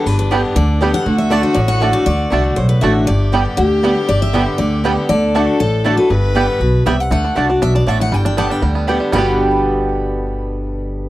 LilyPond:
<<
  \new Staff \with { instrumentName = "Steel-string acoustic guitar" } { \time 4/4 \key g \major \tempo 4 = 238 b'8 b'4 r8 d''4. fis''8~ | fis''8 e''8 d''8 c''8 d''8 fis''4 d''8 | d''2 c''8 b'8 e''4 | d''2 g'2 |
d''8 e''4 r8 d''2 | d''2 a'4. b'8~ | b'2. e''8 fis''8 | fis''2 e''8 d''8 e''8 fis''8 |
g''8 g''8 a''8 g''2 r8 | b''1~ | b''1 | }
  \new Staff \with { instrumentName = "Mandolin" } { \time 4/4 \key g \major r4 <b g' d'' g''>8 r4. <b g' d'' g''>8 r8 | r4 <a fis' d'' a''>8 r4. <a fis' d'' a''>8 r8 | r4 <a fis' d'' a''>8 r4. <a fis' d'' a''>8 r8 | r4 <b g' d'' g''>8 r4. <b g' d'' g''>8 r8 |
r4 <b g' d'' g''>8 r4. <b g' d'' g''>8 r8 | r4 <a fis' d'' a''>8 r4. <a fis' d'' a''>8 r8 | r4 <b g' d'' g''>8 r4. <b g' d'' g''>8 r8 | r4 <a fis' d'' a''>8 r4. <a fis' d'' a''>8 r8 |
r4 <b g' d'' g''>8 r4. <b g' d'' g''>8 r8 | <b g' d'' g''>1~ | <b g' d'' g''>1 | }
  \new Staff \with { instrumentName = "Fiddle" } { \time 4/4 \key g \major d'1 | fis'1~ | fis'2.~ fis'8 r8 | g'1~ |
g'1 | a'1 | b'2.~ b'8 r8 | r1 |
r1 | r1 | r1 | }
  \new Staff \with { instrumentName = "Five-string banjo" } { \time 4/4 \key g \major r4 <g b d'>8 r4. <g b d'>8 r8 | r4 <a d'>8 r4. <a d'>8 r8 | r4 <a d'>8 r4. <a d'>8 r8 | r4 <g b d'>8 r4. <g b d'>8 r8 |
r4 <g b d'>8 r4. <g b d'>8 r8 | r4 <a d'>8 r4. <a d'>8 r8 | r4 <g b d'>8 r4. <g b d'>8 r8 | a8 d'8 d'8 d'8 d'8 d'8 d'8 a8 |
g8 d'8 g8 d'8 g8 b8 d'8 d8 | <g b d' g'>1~ | <g b d' g'>1 | }
  \new Staff \with { instrumentName = "Steel-string acoustic guitar" } { \clef bass \time 4/4 \key g \major << { r4 <d g b g'>4 r4 <d g b g'>4 | r4 <d a d' fis'>4 r4 <d a d' fis'>4 | r4 <d a d' fis'>4 r4 <d a d' fis'>4 | r4 <d g b g'>4 r4 <d g b g'>4 |
r4 <d g b g'>4 r4 <d g b g'>4 | r4 <d a d' fis'>4 r4 <d a d' fis'>8 <d' fis'>8 | r4 <d g b g'>4 r2 | r4 <d a d' fis'>8 <d' fis'>8 r2 |
r4 <d g b g'>4 r4 <d g b g'>4 | <g, b, d g b g'>1~ | <g, b, d g b g'>1 | } \\ { g,2 d2 | d2 a,2 | d2 a,2 | g,2 d2 |
g,2 d2 | d2 a,2 | g,2 b,4 c4 | d2 b,4 a,4 |
g,2 d2 | r1 | r1 | } >> }
  \new Staff \with { instrumentName = "Upright bass" } { \clef bass \time 4/4 \key g \major g,,2 d,2 | d,2 a,,2 | d,4 c,4 b,,4 a,,4 | g,,2 d,2 |
g,,2 d,2 | d,2 a,,2 | g,,2 b,,4 c,4 | d,4 c,4 b,,4 a,,4 |
g,,2 d,2 | g,,1~ | g,,1 | }
>>